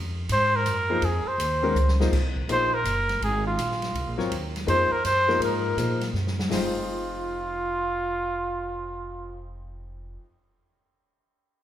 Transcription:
Already playing: F2
0.29 G#2 C5, hi-hat pedal, ride
0.56 A#4
0.66 F#2, hi-hat pedal, ride
0.89 F3 A#3 D#4 G#4 C5
1.02 F2 G#4, ride
1.26 C5, muted upright bass stroke
1.38 D#2, hi-hat pedal, ride
1.63 D#3 G#3 C#4 F#4 A#4
1.75 C#2, hi-hat pedal
1.88 snare
2.00 F3 A#3 D#4 G#4 C5, snare
2.12 C2, kick, snare, crash
2.36 kick
2.48 A#1 F3 A#3 D#4 G#4 C5, hi-hat pedal, ride
2.74 A#4
2.84 F#1, hi-hat pedal, ride
3.09 snare, ride
3.21 G#1 G#4, ride
3.47 F4
3.57 A#1, hi-hat pedal, ride
3.71 snare
3.82 snare, ride
3.94 C2, ride
4.07 A#1
4.18 G#1 F#3 C4 F4 A#4 C#5, snare
4.31 D#2, ride
4.56 snare, ride
4.67 F2 F3 A#3 D#4 G#4 C5, hi-hat pedal, ride
4.92 A#4, muted upright bass stroke
5.04 F#2 C5, hi-hat pedal, ride
5.28 F3 A#3 D#4 G#4 A#4, snare
5.39 G#2, ride
5.44 A#4
5.77 A#2 F3 A#3 D#4 G#4 C5, hi-hat pedal, ride
6.01 snare, ride
6.13 F#2, snare
6.27 snare
6.39 snare
6.49 F1 F2 F3 D#4 G#4 C5, snare, open hi-hat
6.53 F4

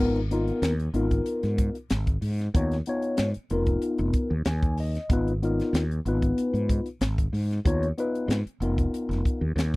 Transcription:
Already playing: B3
0.00 G#1 D#4 F4 A#4
0.16 closed hi-hat
0.31 B3 D#4 F4 A#4, closed hi-hat
0.48 closed hi-hat
0.62 D#2, snare, closed hi-hat
0.80 closed hi-hat
0.94 G#1 B3 D#4 F4 A#4, closed hi-hat
1.11 kick, closed hi-hat
1.26 closed hi-hat
1.43 G#2, snare, closed hi-hat
1.58 kick, closed hi-hat
1.75 closed hi-hat
1.90 G#1, snare, closed hi-hat
2.07 kick, closed hi-hat
2.22 G#2, open hi-hat
2.39 snare, closed hi-hat
2.54 D#2 B3 D#4 F4 C#5, kick, closed hi-hat
2.71 snare, closed hi-hat
2.86 B3 D#4 F4 C#5, closed hi-hat
3.02 closed hi-hat
3.17 G#2, snare, closed hi-hat
3.34 muted fretless electric bass stroke, closed hi-hat
3.50 F1 B3 D#4 F4 A#4, closed hi-hat
3.66 kick, closed hi-hat
3.82 closed hi-hat
3.98 F1, closed hi-hat
4.13 kick, closed hi-hat
4.31 D#2
4.45 D#2 G#5, snare, closed hi-hat
4.62 kick, closed hi-hat
4.78 D#5, open hi-hat
4.95 snare, closed hi-hat
5.09 G#1 B3 D#4 F4 B4, kick, closed hi-hat
5.28 closed hi-hat
5.43 B3 D#4 F4 A#4, closed hi-hat
5.60 snare, closed hi-hat
5.73 D#2, snare, closed hi-hat
5.91 closed hi-hat
6.05 G#1 B3 D#4 F4 B4, closed hi-hat
6.22 kick, closed hi-hat
6.38 closed hi-hat
6.54 G#2, closed hi-hat
6.69 kick, closed hi-hat
6.86 closed hi-hat
7.01 G#1, snare, closed hi-hat
7.18 kick, closed hi-hat
7.33 G#2, open hi-hat
7.51 snare, closed hi-hat
7.65 D#2 B3 D#4 F4 C#5, kick, closed hi-hat
7.83 closed hi-hat
7.98 B3 D#4 F4 B4, closed hi-hat
8.15 closed hi-hat
8.28 G#2, snare, closed hi-hat
8.46 muted fretless electric bass stroke, closed hi-hat
8.60 F1 B3 D#4 F4 A#4, closed hi-hat
8.78 kick, closed hi-hat
8.94 closed hi-hat
9.09 F1, snare, closed hi-hat
9.25 kick, closed hi-hat
9.41 D#2
9.56 D#2, snare, closed hi-hat

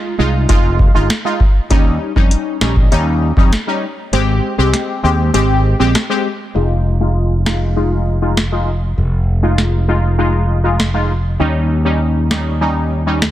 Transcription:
Already playing: G#3 D#4 F4
0.18 C2 G#3 D#4 F4
0.49 F1 G#3 D#4 F4, kick, closed hi-hat
0.79 kick
0.94 G1 G#3 D#4 F4
1.10 snare, closed hi-hat
1.25 G#3 D#4 F4
1.40 kick
1.70 D#2 G3 C#4 D#4, kick, closed hi-hat
2.16 F2 G3 C#4 D#4, kick
2.31 closed hi-hat
2.61 A#1 G3 C#4 D#4, snare
2.76 kick
2.92 D#2 G3 C#4 D#4, closed hi-hat
3.37 F2 G3 C#4 D#4, kick
3.52 snare, closed hi-hat
3.67 G3 C#4 D#4
4.13 G#1 G#3 C4 G4, closed hi-hat
4.58 C2 G#3 C4 G4
4.74 snare, closed hi-hat
5.03 D#2 G#3 C4 G4
5.34 G#1 G#3 C4 G4, closed hi-hat
5.79 A#1 G#3 C4 G4
5.95 cross-stick, snare, closed hi-hat
6.09 G#3 C4 G4
6.55 F1 G#3 D#4 F4
7.00 G#3 D#4 F4
7.46 G#3 D#4 F4, snare
7.76 G#3 D#4 F4
8.22 G#3 D#4 F4
8.37 snare
8.52 G#3 D#4 F4
8.98 F1
9.43 G#3 D#4 F4
9.58 snare
9.88 G#3 D#4 F4
10.18 G#3 D#4 F4
10.64 G#3 D#4 F4
10.80 snare
10.94 G#3 D#4 F4
11.39 D#2 G3 C#4 D#4
11.85 G3 C#4 D#4
12.31 G3 C#4 D#4, snare
12.61 G3 C#4 D#4
13.06 G3 C#4 D#4
13.22 snare

